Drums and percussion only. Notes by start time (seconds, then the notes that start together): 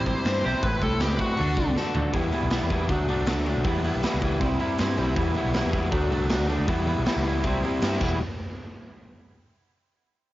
0.06 kick, open hi-hat
0.25 snare, open hi-hat
0.44 open hi-hat
0.62 kick, open hi-hat
0.81 kick, open hi-hat
1.00 snare, open hi-hat
1.19 kick, open hi-hat
1.37 open hi-hat
1.56 kick, open hi-hat
1.76 snare
1.95 floor tom
2.13 kick, open hi-hat
2.32 open hi-hat
2.50 snare, open hi-hat
2.70 kick, open hi-hat
2.89 kick, open hi-hat
3.09 open hi-hat
3.27 snare, open hi-hat
3.46 open hi-hat
3.64 kick, open hi-hat
3.84 open hi-hat
4.03 snare, open hi-hat
4.22 kick, open hi-hat
4.41 kick, open hi-hat
4.60 open hi-hat
4.78 snare, open hi-hat
4.97 open hi-hat
5.16 kick, open hi-hat
5.34 open hi-hat
5.54 snare, open hi-hat
5.73 kick, open hi-hat
5.92 kick, open hi-hat
6.12 open hi-hat
6.30 snare, open hi-hat
6.50 open hi-hat
6.68 kick, open hi-hat
6.87 open hi-hat
7.06 snare, open hi-hat
7.25 open hi-hat
7.44 kick, open hi-hat
7.64 open hi-hat
7.82 snare, open hi-hat
8.01 kick, crash